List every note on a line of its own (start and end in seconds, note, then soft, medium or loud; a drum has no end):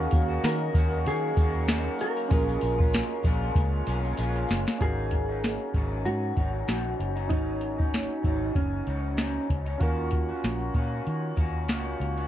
0.00 0.29 D#3 medium
0.00 0.30 A#3 medium
0.00 0.29 C#4 medium
0.00 2.26 C#4 medium
0.00 0.27 F#4 medium
0.00 0.44 F#4 loud
0.00 2.27 F#4 medium
0.00 2.28 F#4 medium
0.00 2.32 A#4 medium
0.00 4.77 A#4 medium
0.00 2.27 D#5 medium
0.00 2.27 F5 medium
0.00 4.77 C#6 medium
0.11 0.38 D#2 loud
0.11 kick loud
0.11 closed hi-hat medium
0.11 tambourine soft
0.28 0.74 A#3 soft
0.28 0.75 C#4 medium
0.28 0.74 F#4 medium
0.44 0.69 D#3 loud
0.44 1.07 A#4 loud
0.44 snare loud
0.44 closed hi-hat loud
0.44 tambourine medium
0.74 1.08 D#2 medium
0.74 1.35 D#3 medium
0.74 1.38 A#3 medium
0.74 1.38 C#4 medium
0.74 1.39 F#4 medium
0.74 kick loud
0.74 closed hi-hat medium
0.74 tambourine medium
1.06 1.31 D#3 loud
1.06 2.01 G#4 loud
1.06 closed hi-hat medium
1.06 tambourine medium
1.36 1.87 D#2 loud
1.36 1.66 D#3 medium
1.36 1.67 A#3 medium
1.36 1.69 C#4 medium
1.36 1.70 F#4 medium
1.36 kick medium
1.36 closed hi-hat medium
1.36 tambourine soft
1.67 2.30 D#3 medium
1.67 2.31 A#3 medium
1.67 2.31 C#4 medium
1.67 2.32 F#4 medium
1.67 snare loud
1.67 closed hi-hat medium
1.67 tambourine medium
1.99 4.15 A#4 medium
1.99 closed hi-hat medium
1.99 tambourine medium
2.17 closed hi-hat medium
2.17 tambourine soft
2.29 2.56 A#1 loud
2.29 2.79 A#2 medium
2.29 2.80 G#3 medium
2.29 4.76 C#4 medium
2.29 2.79 C#4 medium
2.29 4.77 F4 medium
2.29 4.77 G#4 medium
2.29 4.79 F5 medium
2.29 4.79 G#5 medium
2.29 kick loud
2.29 closed hi-hat loud
2.29 tambourine soft
2.33 2.77 F4 medium
2.33 4.78 A#4 medium
2.49 tambourine soft
2.61 3.01 A#1 loud
2.61 closed hi-hat medium
2.61 tambourine soft
2.78 3.24 G#3 medium
2.78 3.25 C#4 medium
2.78 3.24 F4 medium
2.78 kick loud
2.93 snare loud
2.93 closed hi-hat loud
2.93 tambourine medium
3.23 3.50 A#1 loud
3.23 3.85 A#2 medium
3.23 3.87 G#3 medium
3.23 3.88 C#4 medium
3.23 3.88 F4 medium
3.23 kick medium
3.23 closed hi-hat medium
3.23 tambourine medium
3.55 3.81 C#2 loud
3.55 kick loud
3.55 closed hi-hat medium
3.55 tambourine soft
3.86 4.12 B1 medium
3.86 4.16 A#2 medium
3.86 4.17 G#3 medium
3.86 4.19 C#4 medium
3.86 4.20 F4 medium
3.86 closed hi-hat medium
3.86 tambourine soft
4.05 tambourine soft
4.17 4.44 A#1 medium
4.17 4.80 A#2 medium
4.17 4.81 G#3 medium
4.17 4.82 C#4 medium
4.17 4.82 F4 medium
4.17 closed hi-hat medium
4.17 tambourine medium
4.36 closed hi-hat medium
4.49 4.64 F#1 medium
4.49 snare medium
4.49 closed hi-hat medium
4.49 tambourine medium
4.67 snare medium
4.67 closed hi-hat medium
4.79 5.57 G#1 medium
4.79 5.29 G#2 medium
4.79 5.29 F#3 medium
4.79 7.26 C#4 medium
4.79 5.29 C#4 medium
4.79 7.27 D#4 medium
4.79 5.27 D#4 medium
4.79 7.27 F#4 medium
4.79 6.05 G#4 loud
4.79 kick medium
4.79 closed hi-hat medium
4.84 7.28 A#4 medium
5.11 kick medium
5.11 closed hi-hat medium
5.29 5.74 F#3 soft
5.29 5.75 C#4 soft
5.29 5.74 D#4 medium
5.44 snare loud
5.44 closed hi-hat medium
5.74 6.07 G#1 medium
5.74 6.35 G#2 medium
5.74 6.37 F#3 medium
5.74 6.39 C#4 medium
5.74 6.39 D#4 medium
5.74 kick medium
5.74 closed hi-hat medium
6.05 6.31 G#2 loud
6.05 7.35 F#4 medium
6.05 closed hi-hat medium
6.36 6.62 G#1 medium
6.36 6.66 G#2 medium
6.36 6.68 F#3 medium
6.36 6.69 C#4 medium
6.36 6.70 D#4 medium
6.36 kick medium
6.36 closed hi-hat medium
6.68 6.93 A#1 medium
6.68 7.17 G#2 medium
6.68 7.17 F#3 medium
6.68 7.16 C#4 medium
6.68 7.14 D#4 medium
6.68 snare medium
6.68 closed hi-hat medium
7.00 7.31 F#1 medium
7.00 closed hi-hat medium
7.16 7.30 F#3 soft
7.16 7.31 C#4 soft
7.16 7.30 D#4 soft
7.16 closed hi-hat soft
7.28 8.07 G#1 medium
7.28 7.79 G#2 medium
7.28 7.80 F#3 medium
7.28 9.75 C#4 medium
7.28 9.76 D#4 medium
7.28 8.55 D#4 medium
7.28 9.77 F#4 medium
7.28 kick medium
7.28 closed hi-hat medium
7.32 7.80 C#4 medium
7.32 7.77 D#4 medium
7.32 9.78 C#5 medium
7.61 closed hi-hat medium
7.79 8.24 F#3 soft
7.79 8.25 C#4 soft
7.79 8.24 D#4 soft
7.79 kick medium
7.94 snare medium
7.94 closed hi-hat loud
8.23 8.50 G#1 medium
8.23 8.85 G#2 medium
8.23 8.87 F#3 medium
8.23 8.88 C#4 medium
8.23 8.89 D#4 medium
8.23 kick medium
8.23 closed hi-hat medium
8.55 8.81 F#1 medium
8.55 9.46 C#4 medium
8.55 kick medium
8.55 closed hi-hat medium
8.86 9.37 C#2 medium
8.86 9.16 G#2 soft
8.86 9.17 F#3 medium
8.86 9.18 C#4 medium
8.86 9.19 D#4 medium
8.86 closed hi-hat medium
9.17 9.66 G#2 medium
9.17 9.67 F#3 medium
9.17 9.66 C#4 medium
9.17 9.64 D#4 medium
9.17 snare loud
9.17 closed hi-hat medium
9.50 9.75 C#2 medium
9.50 kick medium
9.50 closed hi-hat medium
9.66 9.80 F#3 soft
9.66 9.81 C#4 soft
9.66 9.80 D#4 medium
9.66 closed hi-hat soft
9.78 10.31 D#2 medium
9.78 10.29 D#3 medium
9.78 10.30 A#3 medium
9.78 12.26 C#4 medium
9.78 12.26 F4 medium
9.78 12.27 F#4 medium
9.78 kick loud
9.78 closed hi-hat medium
9.82 10.30 C#4 medium
9.82 10.28 F#4 medium
9.82 12.28 A#4 medium
10.11 kick medium
10.11 closed hi-hat medium
10.29 10.74 A#3 soft
10.29 10.75 C#4 soft
10.29 10.75 F#4 medium
10.44 10.69 A#1 medium
10.44 snare medium
10.44 closed hi-hat loud
10.74 11.00 A#2 medium
10.74 11.36 D#3 medium
10.74 11.36 A#3 medium
10.74 11.38 C#4 medium
10.74 11.40 F#4 medium
10.74 kick medium
10.74 closed hi-hat medium
11.07 11.32 D#3 medium
11.07 closed hi-hat medium
11.36 11.69 D#2 medium
11.36 11.67 D#3 medium
11.36 11.69 A#3 medium
11.36 11.69 C#4 medium
11.36 11.70 F#4 medium
11.36 kick medium
11.36 closed hi-hat medium
11.68 11.94 C#2 medium
11.68 12.17 D#3 medium
11.68 12.18 A#3 medium
11.68 12.17 C#4 medium
11.68 12.15 F#4 medium
11.68 snare medium
11.68 closed hi-hat medium
12.00 12.28 C#2 medium
12.00 closed hi-hat medium
12.16 12.28 A#3 soft
12.16 12.28 C#4 medium
12.16 12.28 F#4 soft
12.16 closed hi-hat medium